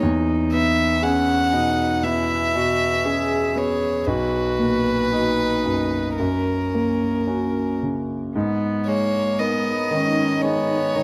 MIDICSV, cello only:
0, 0, Header, 1, 2, 480
1, 0, Start_track
1, 0, Key_signature, 5, "minor"
1, 0, Tempo, 1010101
1, 16, Time_signature, 4, 2, 24, 8
1, 1936, Tempo, 1041667
1, 2416, Tempo, 1077199
1, 3856, Tempo, 1034483
1, 5102, End_track
2, 0, Start_track
2, 0, Title_t, "Cello"
2, 0, Program_c, 0, 42
2, 0, Note_on_c, 0, 63, 64
2, 488, Note_off_c, 0, 63, 0
2, 491, Note_on_c, 0, 61, 59
2, 727, Note_on_c, 0, 63, 57
2, 734, Note_off_c, 0, 61, 0
2, 973, Note_on_c, 0, 64, 60
2, 980, Note_off_c, 0, 63, 0
2, 1212, Note_on_c, 0, 66, 52
2, 1219, Note_off_c, 0, 64, 0
2, 1450, Note_on_c, 0, 68, 56
2, 1457, Note_off_c, 0, 66, 0
2, 1686, Note_off_c, 0, 68, 0
2, 1689, Note_on_c, 0, 68, 53
2, 1937, Note_on_c, 0, 66, 51
2, 1944, Note_off_c, 0, 68, 0
2, 2413, Note_on_c, 0, 63, 48
2, 2420, Note_off_c, 0, 66, 0
2, 2895, Note_on_c, 0, 61, 40
2, 2902, Note_off_c, 0, 63, 0
2, 3619, Note_off_c, 0, 61, 0
2, 3862, Note_on_c, 0, 59, 54
2, 4101, Note_on_c, 0, 58, 57
2, 4107, Note_off_c, 0, 59, 0
2, 4344, Note_on_c, 0, 59, 57
2, 4351, Note_off_c, 0, 58, 0
2, 4591, Note_on_c, 0, 61, 58
2, 4598, Note_off_c, 0, 59, 0
2, 4829, Note_on_c, 0, 59, 59
2, 4836, Note_off_c, 0, 61, 0
2, 5064, Note_on_c, 0, 63, 64
2, 5071, Note_off_c, 0, 59, 0
2, 5102, Note_off_c, 0, 63, 0
2, 5102, End_track
0, 0, End_of_file